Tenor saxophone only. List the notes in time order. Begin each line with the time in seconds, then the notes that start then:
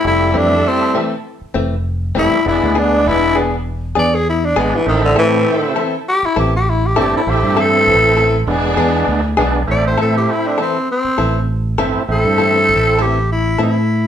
0.07 E4
0.38 D4
0.67 C4
2.18 E4
2.48 E4
2.78 D4
3.08 E4
3.99 D5
4.15 G#4
4.29 E4
4.45 D4
4.59 G#3
4.75 E3
4.88 D#3
5.05 D3
5.19 E3
6.09 G4
6.26 E4
6.39 G4
6.56 G4
6.70 E4
6.86 G4
7.01 G4
7.17 E4
7.30 G4
7.60 A4
9.71 D5
9.87 C5
10.02 A4
10.18 G4
10.31 E4
10.47 D4
10.61 C4
10.92 C4
12.12 A4
13.02 G4
13.32 E4
13.63 E4